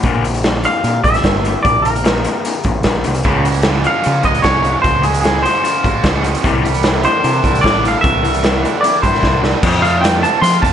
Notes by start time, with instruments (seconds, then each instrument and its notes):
0.03 picked electric bass A#1, overdriven electric guitar A#2 D3 A#3, kick, closed hi-hat
0.24 overdriven electric guitar A#2 D3, closed hi-hat
0.34 closed hi-hat
0.43 overdriven electric guitar A#2 D3, snare, closed hi-hat
0.64 overdriven electric guitar A#2 D3, clean electric guitar F5, closed hi-hat
0.84 picked electric bass A#2, overdriven electric guitar A#2 D3, closed hi-hat
1.04 picked electric bass A#1, overdriven electric guitar A#2 D3, clean electric guitar E5, kick, closed hi-hat
1.14 snare, closed hi-hat
1.24 picked electric bass G1, overdriven electric guitar A#2 D3, kick, snare, closed hi-hat
1.45 overdriven electric guitar A#2 D3, closed hi-hat
1.63 picked electric bass A#1, overdriven electric guitar A#2 D3, clean electric guitar D5, kick, closed hi-hat
1.82 overdriven electric guitar A#2 D3, clean electric guitar A#4, closed hi-hat
1.96 closed hi-hat
2.04 overdriven electric guitar A#2 D3, snare, closed hi-hat
2.24 overdriven electric guitar A#2 D3, closed hi-hat
2.45 overdriven electric guitar A#2 D3, closed hi-hat
2.64 picked electric bass A1, overdriven electric guitar A#2 D3, kick, closed hi-hat
2.83 picked electric bass A#1, overdriven electric guitar A#2 D3, kick, snare, closed hi-hat
3.04 picked electric bass C2, overdriven electric guitar A#2 D3, closed hi-hat
3.14 closed hi-hat
3.24 picked electric bass C#2, overdriven electric guitar C#3 F3 G#3, kick, closed hi-hat
3.45 overdriven electric guitar C#3 F3 G#3, closed hi-hat
3.54 closed hi-hat
3.62 overdriven electric guitar C#3, snare, closed hi-hat
3.66 overdriven electric guitar F3
3.84 overdriven electric guitar C#3 F3 C#4, clean electric guitar F5, closed hi-hat
4.04 overdriven electric guitar C#3 F3 F4, picked electric bass C#3, closed hi-hat
4.23 picked electric bass C#2, overdriven electric guitar C#3 F3 G#3, clean electric guitar D#5, kick, closed hi-hat
4.35 closed hi-hat
4.42 picked electric bass C2, overdriven electric guitar C#3 F3 C#4, clean electric guitar C#5, kick, snare, closed hi-hat
4.62 overdriven electric guitar C#3 F3, closed hi-hat
4.82 picked electric bass C#2, overdriven electric guitar C#3 F3, clean electric guitar C5, kick, closed hi-hat
5.02 overdriven electric guitar C#3 F3 G#3, clean electric guitar G#4, closed hi-hat
5.14 closed hi-hat
5.21 overdriven electric guitar C#3 F3, clean electric guitar G#4, closed hi-hat
5.25 snare
5.43 overdriven electric guitar C#3 F3 C#4, clean electric guitar C5, closed hi-hat
5.64 overdriven electric guitar C#3 F3 F4, closed hi-hat
5.84 picked electric bass G#1, overdriven electric guitar C#3 F3 G#3, kick, closed hi-hat
6.03 picked electric bass C#2, overdriven electric guitar C#3 F3 C#4, kick, snare, closed hi-hat
6.23 overdriven electric guitar C#3 F3, closed hi-hat
6.35 closed hi-hat
6.43 picked electric bass C2, overdriven electric guitar C3 E3 G3, kick, closed hi-hat
6.63 overdriven electric guitar C3 E3 G3, closed hi-hat
6.74 closed hi-hat
6.83 overdriven electric guitar C3 E3, snare, closed hi-hat
7.03 overdriven electric guitar C3 E3 D4, clean electric guitar C5, closed hi-hat
7.24 overdriven electric guitar C3 E3 E4, picked electric bass C3, closed hi-hat
7.43 picked electric bass C2, overdriven electric guitar C3 E3 G3, kick, closed hi-hat
7.55 closed hi-hat
7.61 picked electric bass A1, overdriven electric guitar C3 E3 D4, clean electric guitar D5, kick, closed hi-hat
7.66 snare
7.84 overdriven electric guitar C3 E3, closed hi-hat
7.88 clean electric guitar F5
8.01 picked electric bass C2, overdriven electric guitar C3 E3, clean electric guitar E5, kick, closed hi-hat
8.06 overdriven electric guitar C3
8.23 overdriven electric guitar C3 E3 G3, closed hi-hat
8.34 closed hi-hat
8.43 overdriven electric guitar C3 E3, snare, closed hi-hat
8.63 overdriven electric guitar C3 E3 D4, closed hi-hat
8.81 overdriven electric guitar C3 E3 E4, clean electric guitar D5, closed hi-hat
9.02 picked electric bass G2, overdriven electric guitar C3 E3 G3, clean electric guitar C5, kick, closed hi-hat
9.15 snare
9.23 picked electric bass C2, overdriven electric guitar C3 E3 D4, kick, snare
9.42 overdriven electric guitar C3 E3, snare
9.63 picked electric bass F2, overdriven electric guitar F2 C3 F3, kick, crash
9.82 overdriven electric guitar F2 C3 A3, clean electric guitar F5, closed hi-hat
10.01 overdriven electric guitar F2 C3 F3, clean electric guitar G5, closed hi-hat
10.05 snare
10.21 overdriven electric guitar F2 C3 C4, clean electric guitar A5, closed hi-hat
10.41 overdriven electric guitar F2 C3 F4, picked electric bass F3, clean electric guitar C6, closed hi-hat
10.61 overdriven electric guitar F2 C3 A3, picked electric bass F2, clean electric guitar A5, kick, closed hi-hat